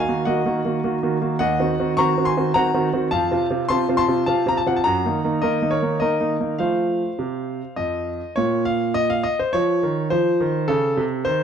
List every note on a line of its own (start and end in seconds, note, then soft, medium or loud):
0.00 0.24 F5 medium
0.00 0.26 G#5 medium
0.08 0.21 D#3 medium
0.08 0.22 A#3 medium
0.08 0.22 F#4 medium
0.25 0.40 D#3 medium
0.25 0.40 A#3 medium
0.25 0.41 F#4 medium
0.25 1.36 D#5 medium
0.25 0.94 F#5 medium
0.45 0.59 D#3 medium
0.45 0.59 A#3 medium
0.45 0.59 F#4 medium
0.65 0.78 D#3 medium
0.65 0.78 A#3 medium
0.65 0.79 F#4 medium
0.84 0.97 D#3 medium
0.84 0.97 A#3 medium
0.84 0.98 F#4 medium
1.03 1.16 D#3 medium
1.03 1.16 A#3 medium
1.03 1.17 F#4 medium
1.21 1.35 D#3 medium
1.21 1.35 A#3 medium
1.21 1.35 F#4 medium
1.39 1.59 D#2 medium
1.39 1.94 D#5 medium
1.39 1.93 F#5 loud
1.59 1.73 D#3 medium
1.59 1.73 C4 medium
1.59 1.73 F#4 medium
1.79 1.93 D#3 medium
1.79 1.93 C4 medium
1.79 1.93 F#4 medium
1.97 2.12 D#3 medium
1.97 2.12 C4 medium
1.97 2.12 F#4 medium
1.97 2.25 A#5 medium
1.97 2.26 C#6 loud
2.17 2.31 D#3 medium
2.17 2.31 C4 medium
2.17 2.32 F#4 medium
2.25 2.53 G#5 medium
2.25 2.51 C6 medium
2.37 2.50 D#3 medium
2.37 2.50 C4 medium
2.37 2.51 F#4 medium
2.54 2.69 D#3 medium
2.54 2.69 C4 medium
2.54 2.70 F#4 medium
2.54 3.09 F#5 medium
2.54 2.89 A#5 loud
2.74 2.88 D#3 medium
2.74 2.88 C4 medium
2.74 2.88 F#4 medium
2.93 3.07 D#3 medium
2.93 3.07 C4 medium
2.93 3.07 F#4 medium
3.11 3.31 F2 medium
3.11 3.66 F5 medium
3.11 3.46 A5 loud
3.31 3.45 C3 medium
3.31 3.45 C4 medium
3.31 3.46 F4 medium
3.50 3.64 C3 medium
3.50 3.64 C4 medium
3.50 3.65 F4 medium
3.69 3.84 C3 medium
3.69 3.84 C4 medium
3.69 3.84 F4 medium
3.69 3.96 A5 medium
3.69 3.86 C6 loud
3.88 4.02 C3 medium
3.88 4.03 C4 medium
3.88 4.03 F4 medium
3.97 4.25 A5 medium
3.97 4.23 C6 loud
4.08 4.22 C3 medium
4.08 4.22 C4 soft
4.08 4.22 F4 medium
4.26 4.41 C3 medium
4.26 4.41 C4 medium
4.26 4.42 F4 medium
4.26 4.47 F5 medium
4.26 4.48 A5 loud
4.46 4.60 C3 medium
4.46 4.60 C4 medium
4.46 4.60 F4 medium
4.46 4.57 A#5 medium
4.57 4.66 A5 medium
4.66 4.80 C3 medium
4.66 4.80 C4 soft
4.66 4.80 F4 medium
4.66 4.76 F#5 medium
4.76 4.85 A5 medium
4.84 5.04 F#2 medium
4.84 5.38 F#5 medium
4.84 5.42 A#5 loud
5.05 5.18 D#3 soft
5.05 5.19 A#3 medium
5.05 5.19 D#4 medium
5.24 5.37 D#3 medium
5.24 5.38 A#3 medium
5.24 5.38 D#4 medium
5.42 5.56 D#3 medium
5.42 5.57 A#3 medium
5.42 5.57 D#4 medium
5.42 5.69 A#4 medium
5.42 5.71 D#5 medium
5.62 5.76 D#3 medium
5.62 5.76 A#3 medium
5.62 5.76 D#4 medium
5.71 5.99 A#4 medium
5.71 6.00 C#5 medium
5.82 5.96 D#3 soft
5.82 5.96 A#3 soft
5.82 5.96 D#4 medium
6.00 6.15 D#3 soft
6.00 6.15 A#3 soft
6.00 6.16 D#4 medium
6.00 6.56 A#4 medium
6.00 6.35 D#5 medium
6.20 6.34 D#3 soft
6.20 6.35 A#3 soft
6.20 6.35 D#4 medium
6.40 6.54 D#3 soft
6.40 6.54 A#3 soft
6.40 6.54 D#4 soft
6.58 7.01 F3 medium
6.58 7.07 A3 soft
6.58 7.07 F4 soft
6.58 8.04 C5 medium
6.58 8.07 F5 medium
7.19 7.60 C3 medium
7.76 8.19 F2 medium
7.76 8.32 D#5 medium
8.36 9.21 A#2 medium
8.36 8.63 C#5 medium
8.65 8.95 F5 loud
8.94 9.10 D#5 loud
9.10 9.25 F5 loud
9.24 9.39 D#5 loud
9.39 9.54 C5 medium
9.53 9.81 F3 medium
9.53 10.11 C#5 loud
9.83 10.10 D#3 medium
10.10 10.38 F3 medium
10.10 10.68 C5 medium
10.40 10.67 D#3 medium
10.68 10.96 C#3 medium
10.68 11.02 A4 loud
10.97 11.24 C3 medium
11.25 11.43 D#3 medium
11.25 11.43 C5 medium